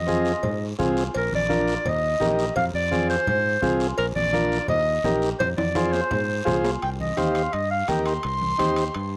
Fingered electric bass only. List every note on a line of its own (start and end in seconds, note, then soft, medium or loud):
0.00 0.33 F2 medium
0.44 0.72 G#2 medium
0.79 1.08 C2 medium
1.16 1.29 A#1 medium
1.34 1.76 A#1 loud
1.86 2.14 D#2 medium
2.21 2.49 A#1 medium
2.57 2.71 F2 medium
2.74 3.16 F2 medium
3.28 3.56 G#2 medium
3.64 3.92 C2 medium
3.99 4.13 A#1 medium
4.16 4.58 A#1 medium
4.69 4.97 D#2 medium
5.04 5.33 A#1 medium
5.41 5.55 F2 loud
5.58 6.01 F2 medium
6.12 6.40 G#2 medium
6.47 6.76 C2 medium
6.83 7.11 C2 medium
7.19 7.47 D#2 medium
7.54 7.82 G2 medium
7.89 8.17 D#2 medium
8.25 8.53 C2 medium
8.60 8.88 D#2 medium
8.96 9.17 G2 medium